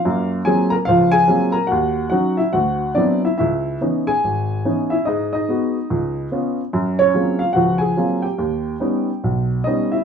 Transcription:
X:1
M:4/4
L:1/8
Q:"Swing" 1/4=144
K:F#dor
V:1 name="Upright piano"
[^E^e] z [Gg] [^A^a] [Ee] [Gg]2 [Aa] | [Ff]2 [Ff] [Ee] [Ff]2 [=D=d] [Ee] | [Ee]2 z [Gg]4 [Ee] | [Dd] [Dd]6 z |
z [Cc]2 [^E^e] [Ff] [Gg]2 [=G=g]- | [=G=g]4- [Gg] z [Dd] [Ee] |]
V:2 name="Upright piano"
[F,,^A,]2 [F,G,A,^B,^E] z [C,,^E,]2 [F,G,A,B,E] z | D,,2 [F,CD] z =D,,2 [F,B,=CE] z | C,,2 [E,B,CD] z G,,,2 [E,B,CD] z | G,,2 [G,B,F] z C,,2 [B,C^E] z |
F,,2 [F,G,^A,^B,^E] z [C,,^E,]2 [F,G,A,B,E] z | D,,2 [=G,B,CD] z B,,,2 [G,B,C] z |]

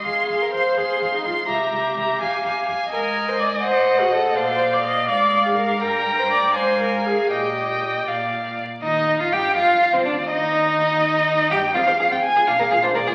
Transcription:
X:1
M:6/8
L:1/16
Q:3/8=83
K:Fm
V:1 name="Violin"
c'2 c'2 c'2 c'2 c'2 c'2 | b2 b2 b2 a2 a2 a2 | [K:Eb] a6 ^f6 | f6 f6 |
b6 a6 | g6 f4 z2 | E3 F G2 F3 C D2 | E8- E2 G2 |
F c A F z A F B A F B A |]
V:2 name="Violin"
f2 f2 f2 f2 f2 f2 | =e2 e2 e2 f2 f2 f2 | [K:Eb] e12 | d6 f6 |
g6 f6 | e6 d4 z2 | e3 f g2 f3 c d2 | e8- e2 g2 |
f3 g a2 f3 c d2 |]
V:3 name="Viola"
A3 B c2 A3 E F2 | G8- G2 z2 | [K:Eb] B3 c d2 c3 ^F =A2 | c3 d e2 d3 A B2 |
B3 c d2 c2 B2 A2 | G6 z6 | E3 F G2 F3 C D2 | E8- E2 G2 |
C A F C z F D A F D A F |]
V:4 name="Cello" clef=bass
F,,2 F,,2 F,,2 F,,2 F,,2 F,,2 | C,,2 C,,2 C,,2 F,,2 F,,2 F,,2 | [K:Eb] A,,6 =A,,6 | B,,6 A,,6 |
G,,6 A,,6 | B,,6 B,,4 z2 | E,,3 F,, G,,2 F,,3 C,, D,,2 | E,,8- E,,2 G,,2 |
F,, F,, F,, F,, z F,, B,, B,, B,, B,, B,, B,, |]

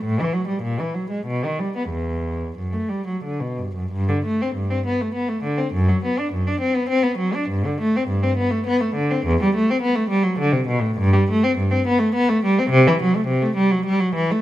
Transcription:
X:1
M:3/4
L:1/16
Q:1/4=102
K:Em
V:1 name="Cello" clef=bass
A,, E, F, G, ^A,, E, F, ^G, B,, ^D, =G, B, | E,,4 F,, A, G, F, D, B,, G,, F,, | [K:G] G,, D, A, C G,, C B, A, B, A, D, C | F,, F, B, D F,, D C B, C B, F, D |
G,, D, A, C G,, C B, A, B, A, D, C | E,, G, A, C B, A, G, F, D, C, B,, A,, | G,, G, A, C G,, C B, A, B, A, G, C | C, E, F, A, C, A, G, F, G, F, E, A, |]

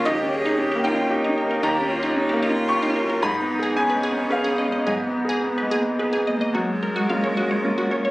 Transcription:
X:1
M:3/4
L:1/16
Q:1/4=112
K:F#
V:1 name="Synth pluck"
D z2 D z =G D z G D A A | D z2 D z =G D z G D A A | G z2 G z B G z B G d d | G z2 G z B G z B G d d |
F z A F e c F c z F c c |]
V:2 name="Cello"
=G2 ^G2 =G2 E2 D4 | =G2 E2 D2 E6 | D4 C8 | B,4 B,2 A,2 B,2 A,2 |
G,12 |]
V:3 name="Grand piano"
d6 =g6 | a8 c'4 | b4 g4 e4 | d8- d2 z2 |
z12 |]
V:4 name="Grand piano"
(3D,,2 C2 =G2 (3C2 A,2 C2 (3G2 C2 A,2 | (3D,,2 C2 =G2 (3C2 A,2 C2 (3G2 C2 A,2 | (3G,,2 B,2 G2 (3B,2 G,2 B,2 (3G2 B,2 G,2 | (3G,,2 B,2 G2 (3B,2 G,2 B,2 (3G2 B,2 G,2 |
F,,4 [A,CE]4 [A,CE]4 |]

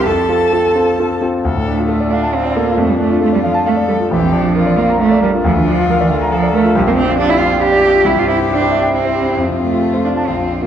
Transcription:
X:1
M:3/4
L:1/16
Q:1/4=136
K:F
V:1 name="Grand piano"
F,,2 [CFA]2 [CFA]2 [CFA]2 [CFA]2 [CFA]2 | [K:Dm] D,, A,, D F A d f a f d A F | F,, F, D F A d f a f d A F | B,,, F,, D F B d f b f d B F |
D,, D, D F B d f b f d B F | [K:F] B,,, F,, D F G d f g f d G F | C,, G,, C E G c e g e c G E | F,, C, C F A c f a B,,, F,, D F |]
V:2 name="Violin"
a8- a2 z2 | [K:Dm] A4 F8 | D4 F4 A4 | G4 F4 D4 |
F8 A4 | [K:F] G4 F4 D4 | G8 E4 | F8 F4 |]
V:3 name="Cello"
A8- A2 z2 | [K:Dm] z2 A,4 D2 C2 B,2 | A, G, A,2 A, G, F,2 A,2 G,2 | E,2 F,4 B,2 A,2 G,2 |
F, E, F,2 F, E, D,2 F,2 A,2 | [K:F] G, B, C2 D E F2 G4 | E F E2 D4 C4 | z2 A,4 D2 C3 B, |]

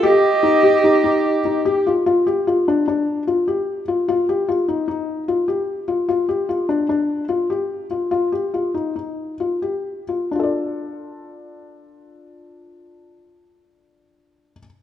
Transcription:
X:1
M:5/4
L:1/8
Q:1/4=147
K:Dphr
V:1 name="Flute"
e8 z2 | z8 z2 | z8 z2 | z8 z2 |
z8 z2 | z8 z2 | z8 z2 |]
V:2 name="Viola"
G8- G z | z8 z2 | z8 z2 | z8 z2 |
z8 z2 | z8 z2 | z8 z2 |]
V:3 name="Felt piano"
G2 E G E E2 E G F | F G F D D2 F G2 F | F G F E E2 F G2 F | F G F D D2 F G2 F |
F G F E E2 F G2 F | [DFAd]8- [DFAd]2- | [DFAd]8- [DFAd]2 |]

